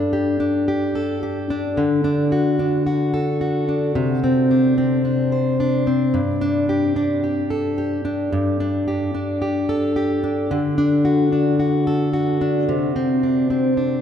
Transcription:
steel-string acoustic guitar
Already playing: G2 D4 G4 A4
0.13 G4
0.40 D4
0.68 G4
0.95 A4
1.23 G4
1.50 D4
1.77 D3
2.04 D4
2.32 F#4
2.59 D4
2.86 F#4
3.14 A4
3.41 F#4
3.69 D4
3.95 C3
4.24 C4
4.51 D4
4.78 C4
5.05 D4
5.32 C5
5.60 D4
5.87 C4
6.14 G2
6.41 D4
6.69 G4
6.96 D4
7.24 G4
7.50 A4
7.78 G4
8.05 D4
8.33 G2
8.60 D4
8.88 G4
9.14 D4
9.42 G4
9.69 A4
9.96 G4
10.24 D4
10.51 D3
10.78 D4
11.05 F#4
11.32 D4
11.60 F#4
11.87 A4
12.13 F#4
12.41 D4
12.69 C3
12.96 C4
13.23 D4
13.50 C4
13.77 D4

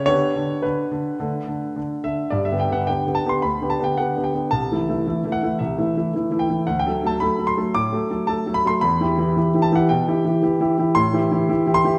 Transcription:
grand piano
0.06 D3 B3 G4 C#5
0.36 D3
0.62 D3 B4
0.91 D3
1.20 D3 A3 A4
1.48 D3
1.76 D3
2.04 D3 E5
2.30 G2 D5
2.45 E5
2.51 D3 B3 G4
2.60 G5
2.69 D3 B3 G4 F#5
2.87 D3 B3 G4 G5
3.06 D3 B3 G4
3.15 A5
3.25 D3 B3 G4
3.29 C6
3.42 D2 B5
3.61 D3 B3 G4
3.70 A5
3.79 D3 B3 G4
3.84 G5
3.97 D3 B3 G4 F#5
4.16 D3 B3 G4
4.24 G5
4.34 D3 B3 G4
4.51 C2 A5
4.72 E3 A3 E4
4.89 E3 A3 E4
5.07 E3 A3 E4
5.24 E3 A3 E4
5.32 F#5
5.43 E3 A3 E4
5.59 C2 E5
5.78 E3 A3 E4
5.97 E3 A3 E4
6.14 E3 A3 E4
6.31 E3 A3 E4
6.39 G5
6.50 E3 A3 E4
6.67 D2 F#5
6.79 G5
6.86 F#3 A3 A4
7.04 F#3 A3 A4 A5
7.20 F#3 A3 A4 B5
7.38 F#3 A3 A4
7.47 C6
7.57 F#3 A3 A4
7.74 A2 D6
7.92 F#3 A3 A4
8.10 F#3 A3 A4
8.27 F#3 A3 A4 A5
8.46 F#3 A3 A4
8.54 B5
8.65 F#3 A3 A4 C6
8.81 E2 B5
9.01 E3 E4 G4
9.18 E3 E4 G4
9.37 E3 E4 G4
9.54 E3 E4 G4
9.62 A5
9.72 E3 E4 G4 F#5
9.89 B2 G5
10.08 E3 E4 G4
10.25 E3 E4 G4
10.43 E3 E4 G4
10.60 E3 E4 G4
10.78 E3 E4 G4
10.95 A2 C6
11.13 E3 E4 G4
11.31 E3 E4 G4
11.49 E3 E4 G4
11.67 E3 E4 G4
11.74 C6
11.84 E3 E4 G4

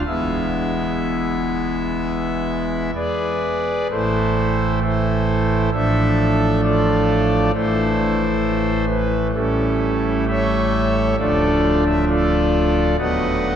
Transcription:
pipe organ
0.07 E1 E2 G#3 B3 E4 E5
2.95 G#4 B4 D5
3.90 A1 A2 E3 A3 E4 A4 C5
4.82 E4 A4 C5
5.73 A1 A2 F3 A3 D4 A4 E5
6.64 F4 A4 D5
7.54 A1 A2 E3 A3 E4 A4 C5
8.89 B4
9.34 A1 A2 G3 A3 C#4 E4 A4
10.28 A4 C#5 E5
11.19 D1 D2 F3 A3 D4 F4 A4 D5
11.86 E5
12.09 F4 A4 D5
12.99 D#1 D#2 F#3 A3 B3 B4 D#5 F#5

